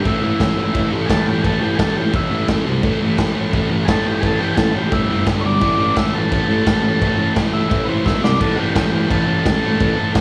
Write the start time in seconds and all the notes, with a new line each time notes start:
0.05 A1 A2 E3 A3 E4, kick, crash
0.23 A1 A2 E3 A3 E4
0.40 A1 A2 E3 A3, kick, snare, crash
0.57 A1 A2 E3 A3
0.74 A1 A2 E3 A3, kick, crash
0.91 A1 A2 E3 A3
1.06 A1 A2 E3 G#4 A4, kick, crash
1.10 A3, snare
1.26 A1 A2 E3 A3 G4
1.41 A1 A2 G#4, kick, crash
1.45 E3 A3 A4
1.61 A1 A2 E3 A3 G4
1.75 A1 A2 G#4, kick, crash
1.80 E3 A3 A4, snare
1.96 A1 A2 E3 A3 G4
2.13 A1 A2 E3 A3 E4, kick, crash
2.31 A1 A2 E3 A3
2.48 A1 A2 E3 A3, kick, snare, crash
2.65 C2 C3 G3 C4
2.83 A1 A2 E3 A3, kick, crash
3.01 A1 A2 E3 A3
3.17 A1 A2 E3 A3, kick, snare, crash
3.34 A1 A2 E3 A3
3.52 A1 A2 E3 A3, kick, crash
3.69 A1 A2 E3 A3
3.85 A1 A2 E3 A3 G#4, kick, snare, crash
3.90 A4
4.04 A1 A2 E3 A3 G4
4.20 A1 A2 E3 A3 G#4, kick, crash
4.25 A4
4.39 A1 A2 E3 A3 G4
4.54 A1 A2 E3 A3 G#4 A4, kick, snare, crash
4.74 A1 A2 E3 A3
4.78 G4
4.92 A1 A2 E3 G3 A3 E4, kick, crash
5.09 F#1 A2 E3 A3
5.26 G1 G2 D3 G3, kick, snare, crash
5.41 G1 G2 D3 G3 C#5
5.46 D5
5.61 A1 A2 E3 A3, kick, crash
5.79 A1 A2 E3 A3
5.96 A1 A2 E3 A3 E5, kick, snare, crash
6.14 A1 A2 E3 A3 A4
6.31 A1 A2 E3 A3 A4, kick, crash
6.49 A1 A2 E3 A3
6.66 A1 A2 E3 A3, kick, snare, crash
6.83 A1 A2 E3 A3
7.01 A1 A2 E3 A3, kick, crash
7.17 A1 A2 E3 A3
7.36 A1 A2 E3 A3, kick, snare, crash
7.52 A1 A2 E3 A3 E5
7.70 A1 A2 E3 A3, kick, crash
7.85 A1 A2 E3 A3 B4 C5
8.05 B1 A2 E3 A3 E5, kick, snare
8.22 C2 C3 G3 C4 D5, snare
8.39 A1 A2 E3 A3 A4, kick, crash
8.56 A1 A2 E3 A3 F#4 G4
8.74 A1 A2 E3 A3, kick, snare, crash
8.91 A1 A2 E3 A3
9.09 A1 A2 E3 A3 A4, kick, crash
9.26 A1 A2 E3 A3
9.43 A1 A2 E3 A3, kick, snare, crash
9.61 A1 A2 E3 A3
9.80 A1 A2 E3 A3, kick, crash
9.98 A1 A2 E3 A3
10.15 A1 A2 E3 A3, kick, snare, crash